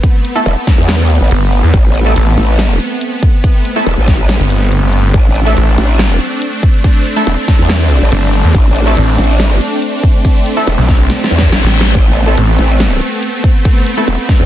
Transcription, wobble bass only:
0.46 E1
0.78 E2
1.21 A1
1.74 A1
2.37 A1
3.86 E1
3.97 A1
5.14 A1
5.78 A1
7.27 E1
7.59 E2
8.01 A1
8.55 A1
9.18 A1
10.67 E1
11.31 E2
11.52 A1
11.95 A1
12.59 A1
14.08 E1
14.40 E2

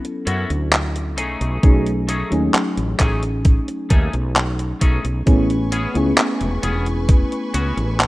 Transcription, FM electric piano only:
Already playing: F#3 B3 C#4 E4 A4
1.63 F#3 A3 C#4 D#4 G#4
2.30 F#3 A3 C#4 D#4 G#4
5.26 A3 B3 C#4 E4 G#4
5.94 A3 B3 C#4 E4 G#4

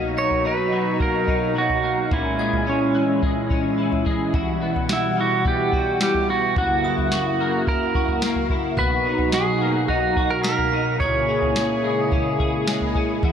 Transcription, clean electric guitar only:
Already playing: B2 F#3 A#3 D#4
0.45 D#4
0.72 F#3
1.00 A#3
1.28 D#4
1.56 F#3
1.83 A#3
2.11 A#2 C#4
2.39 G#3
2.67 C#4
2.94 E3
3.23 G#3
3.50 C#4
3.78 E3
4.06 G#3
4.34 E3 F#4
4.62 B3
4.89 F#4
5.17 G3
5.45 B3
5.73 F#4
6.01 G3
6.29 B3
6.57 F#2 F#4
6.85 E4
7.12 F#4
7.41 A#3
7.68 E4
7.95 F#4
8.23 A#3
8.51 E4
8.78 B2 F#4
9.06 D#4
9.34 F#4
9.62 A#3
9.89 D#4
10.17 F#4
10.45 A#3
10.73 D#4
11.01 A#2 G#4
11.29 C#4
11.56 G#4
11.84 G#3
12.12 C#4
12.40 G#4
12.68 G#3
12.95 C#4
13.24 E3 F#4

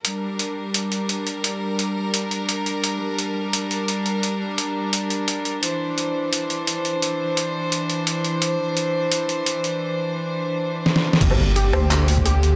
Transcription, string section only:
0.05 G3 D4 A#4
5.63 E3 C5
11.21 D3 A#3 G4

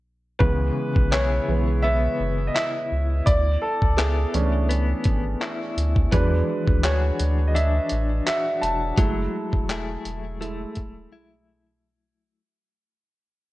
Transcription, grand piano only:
0.40 E3 G#3 B3 B4
1.11 C#5
1.48 E3 G#3 B3
1.82 E5
2.47 D#5
2.54 E5
3.26 D5
3.62 A4
3.97 G#4
4.34 E3 A3 C#4 D4
6.12 F#3 G#3 D4 B4
6.83 C#5
7.47 D#5
7.55 E5
8.26 E5
8.62 A5
8.98 G#3 A3 E4
10.41 G#3 A3 E4

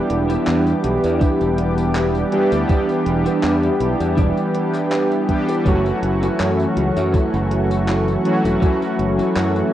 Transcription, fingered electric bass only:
0.10 E1
0.47 E2
0.84 B1
1.04 E2
1.21 muted fingered electric bass stroke
1.41 E1
2.52 D2
3.06 E1
3.26 muted fingered electric bass stroke
3.43 E2
3.80 B1
4.00 E2
4.18 E1
5.66 F#1
6.03 F#1
6.40 F#2
6.77 C#2
6.97 F#2
7.14 muted fingered electric bass stroke
7.34 F#1
8.45 E1
8.99 F#1
9.19 muted fingered electric bass stroke
9.36 F#2

